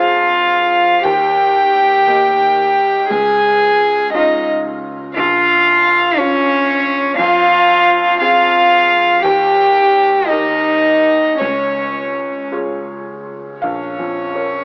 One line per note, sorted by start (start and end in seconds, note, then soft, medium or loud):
0.00 1.06 F2 medium
0.00 1.00 F4 medium
0.00 1.02 F4 loud
0.00 1.00 G#4 medium
0.00 1.00 C5 medium
0.00 1.05 F5 medium
1.03 2.04 D#2 medium
1.03 3.06 G4 loud
1.03 3.12 G5 loud
2.07 3.06 A#3 medium
2.07 3.06 G4 medium
2.07 3.07 D#5 medium
3.09 4.10 C#2 medium
3.09 4.11 G#4 loud
3.09 4.13 G#5 medium
4.13 5.12 C#4 medium
4.13 4.47 D#4 medium
4.13 5.12 F4 medium
4.13 4.47 D#5 medium
4.13 5.12 F5 medium
5.15 6.15 A#1 medium
5.15 6.20 F4 loud
5.15 6.20 F5 loud
6.18 7.19 C#4 loud
6.18 7.14 C#4 medium
6.18 7.15 F4 medium
6.18 7.17 C#5 medium
6.18 7.15 F5 medium
7.17 8.17 F2 medium
7.17 8.20 F4 loud
7.17 8.17 F5 loud
8.20 9.20 C4 medium
8.20 9.21 F4 loud
8.20 9.20 G#4 medium
8.20 9.25 F5 loud
8.20 9.20 F5 medium
9.23 10.26 D#2 medium
9.23 10.30 G4 loud
9.23 10.28 G5 loud
10.28 11.39 D#4 loud
10.28 11.36 D#4 medium
10.28 11.36 G4 medium
10.28 11.36 A#4 medium
10.28 11.40 D#5 medium
11.39 12.48 C#2 medium
11.39 12.49 C#4 medium
11.39 12.51 C#5 medium
12.52 13.58 F4 soft
12.52 13.59 G#4 soft
12.52 13.59 C#5 medium
13.62 14.64 A#1 medium
13.62 14.64 C#4 medium
13.62 14.64 C#5 medium
13.62 14.64 F5 medium
13.99 14.56 F2 soft
14.35 14.64 A#4 soft
14.35 14.64 C#5 soft